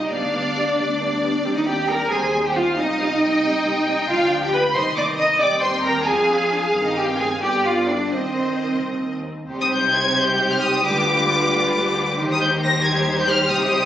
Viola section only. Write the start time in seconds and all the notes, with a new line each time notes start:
0.10 G3 B3
0.33 G3 B3
0.55 G3 B3
0.78 G3 B3
1.00 G3 B3
1.22 G3 B3
1.44 G3 C4
1.67 G3 C4
1.89 G3 C4
2.11 G3 C4
2.33 G3 C4
2.55 G3 C4
2.78 G3 C4
3.00 G3 C4
3.21 G3 C4
3.44 G3 C4
3.65 G3 C4
3.88 G3 C4
4.09 F3 D4
4.75 D#3 D#4
5.41 G3 C4
6.07 F3 C4
6.29 D4
6.52 D4
6.74 D#3 C4
7.42 D3 B3
8.11 D#3 C4
9.50 G3 D#4
10.85 F4
12.19 G3 D#4